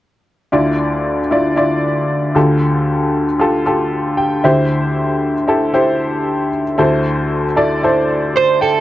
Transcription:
0.52 D2 D3 E4 F4 D5
1.31 E4 F4 D5
1.56 E4 F4 D5
2.35 D2 D3 F4 G4 A4
3.40 F4 G4 A4
3.66 F4 G4 A4
4.17 G5
4.44 D2 D3 E4 G4 C5 E5
5.48 E4 G4 A4
5.74 E4 G4 C5
6.78 D2 D3 E4 A4 C5
7.56 E4 A4 D5
7.83 E4 A4 C5
8.36 C5
8.61 A4 G5

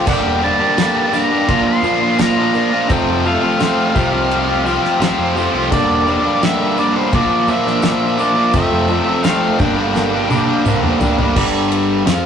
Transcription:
0.06 G1 G2 D3 G3 A#3 D4 G4 A#4 D5 G5, kick, tambourine, splash, crash
0.24 E1
0.41 G3 A#3 D4 G4 A#4 C5 A5, tambourine
0.59 G3 A#3 D4 G4
0.76 G2 D3 G3 A#3 D4 G4 A#4 D5, snare, tambourine, crash
0.81 A#4
1.12 G3 A#3 D4 G4 A#4 D5 A#5, snare, tambourine
1.16 G3
1.30 G3 A#3 D4 G4
1.47 A#1 A#2 D3 F3 A#3 D4 F4 A#4 D5, kick, crash
1.68 C6
1.82 A#2 F3 A#3 F4 A#4 D5, tambourine
1.86 D4 F4
2.01 A#3 D4 F4
2.18 A#2 F3 A#3 D4 F4 A#4 D5 A#5, snare, tambourine, crash
2.36 A#3 D4 F4
2.53 F3 A#3 D4 F4 A#4 D5, tambourine
2.70 A#3 D4 F4
2.88 F1 F2 C3 F3 A3 C4 F4 A4 C5 G5, kick, tambourine, crash
3.07 F2
3.23 F3 A3 C4 F4 A4 C5 F5, tambourine
3.40 F3 A3 C4 F4
3.58 F2 C3 F3 A3 C4 F4 A4 C5, snare, tambourine, crash
3.94 C2 C3 F3 C4 F4 G4 C5, kick, tambourine
4.11 C4 F4 G4
4.31 crash
4.64 F3 C4 F4 G4 C5, tambourine
4.82 C4 F4 G4, snare
5.00 A1 C3 F3 C4 F4 G4 C5, snare, tambourine, crash
5.18 F2 C4 F4 G4
5.35 F3 C4 F4 G4 A4, tambourine
5.53 C2 C4 F4 G4
5.70 G1 G2 D3 G3 A#3 D4 G4 A#4 D5, kick, tambourine, crash
5.89 E1
6.06 D3 G3 A#3 D4 G4 A#4 C5, tambourine
6.23 G3 A#3 D4
6.41 G2 D3 G3 A#3 D4 G4 A#4 E5, snare, tambourine, crash
6.76 D3 G3 A#3 G4 A#4 D5, tambourine
6.80 D4
6.94 G3 A#3 D4 C5
7.11 A#1 A#2 D3 F3 A#3 D4 F4 A#4 D5, kick, crash
7.47 A#2 F3 A#3 D4 F4 A#4 C5 E5, tambourine
7.65 F3 A#3 D4, snare
7.82 A#2 F3 A#3 D4 F4 A#4 D5, snare, tambourine, crash
8.01 F3 A#3 D4
8.17 A#2 F3 A#3 F4 A#4 D5 E5, tambourine
8.21 D4
8.36 F3 A#3 D4
8.53 F1 F2 C3 F3 A3 F4 A4 C5 E5, kick, tambourine, crash
8.57 C4
8.71 F2
8.87 C3 F3 A3 F4 A4 D5, tambourine
8.92 C4
9.06 F3 A3 C4
9.23 F2 C3 F3 A3 F4 A4 D5 F5, snare, tambourine, crash
9.28 C4
9.59 G1 G2 D3 G3 A#3 D4 G4 A#4 D5 G5, kick, tambourine
9.76 G3 A#3 D4
9.94 G2 D3 G3 A#3 D4 A#4, snare, tambourine
10.29 D3 G3 A#3 D4 G4 A#4 D5, high tom, tambourine
10.48 G3 A#3 D4
10.65 C2 G2 D3 G3 A#3 D4 G4 A#4 C5, mid tom, tambourine
10.82 A#1 G3 A#3 D4, mid tom
10.99 A1 D3 G3 A#3 G4 A#4 F5, floor tom, tambourine
11.03 D4
11.17 G1 G3 A#3 D4, floor tom
11.35 G1 G2 D3 G3 G4 A#4 D5, kick, crash
11.71 G4 A#4 D5, ride
12.05 F2 F3 C4 F4 C5 F5, snare, ride, tambourine

